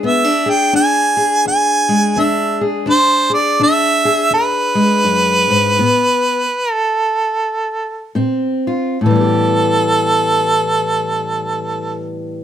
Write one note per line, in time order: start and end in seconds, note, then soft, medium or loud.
0.00 0.69 E2 medium
0.00 0.27 G#3 medium
0.00 0.27 G#4 medium
0.04 0.24 B3 medium
0.04 0.51 E5 medium
0.24 0.72 D4 soft
0.46 1.16 G#4 medium
0.46 0.75 G5 loud
0.73 1.40 E2 medium
0.73 2.17 D4 medium
0.73 1.43 G#5 loud
1.17 2.60 G#4 medium
1.46 2.12 E2 medium
1.46 2.21 G#5 loud
1.89 2.85 G#3 medium
2.16 2.82 E2 medium
2.16 2.85 D4 medium
2.16 2.62 E5 medium
2.61 2.86 G#4 medium
2.86 3.53 E2 medium
2.86 3.59 D4 medium
2.90 3.30 C5 loud
3.30 4.03 G#4 medium
3.30 3.59 D5 medium
3.60 4.26 E2 medium
3.60 5.76 D4 medium
3.60 4.30 E5 loud
4.05 5.77 G#4 medium
4.31 4.99 E2 medium
4.31 6.73 B4 loud
4.75 5.76 G#3 medium
5.04 5.49 F#2 medium
5.50 5.80 G#2 medium
5.79 6.44 A2 medium
5.79 6.44 B3 medium
6.73 8.14 A4 loud
8.15 8.94 A#2 medium
8.15 8.97 C4 medium
8.67 8.97 F4 medium
9.01 12.44 A2 medium
9.01 12.04 A4 medium
9.06 12.44 E3 medium
9.11 12.44 G3 medium
9.16 12.44 B3 medium
9.21 12.44 G4 soft